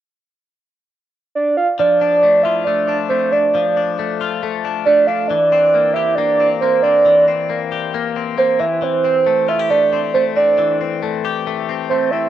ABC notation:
X:1
M:4/4
L:1/16
Q:1/4=137
K:Dm
V:1 name="Soft synth lead"
z12 d2 f2 | d6 e2 d2 d2 c2 d2- | d2 z8 z2 d2 f2 | d6 e2 d2 d2 c2 d2- |
d2 z8 z2 c2 e2 | c6 e2 d2 d2 c2 d2- | d2 z8 z2 c2 e2 |]
V:2 name="Clean electric guitar"
z16 | F,2 D2 A,2 F2 A,2 D2 A,2 D2 | F,2 D2 A,2 F2 A,2 D2 A,2 D2 | E,2 C2 B,2 G2 B,2 C2 B,2 C2 |
E,2 C2 B,2 G2 B,2 C2 B,2 E,2 | E,2 C2 A,2 F G A,2 C2 A,2 C2 | E,2 C2 A,2 G2 A,2 C2 A,2 C2 |]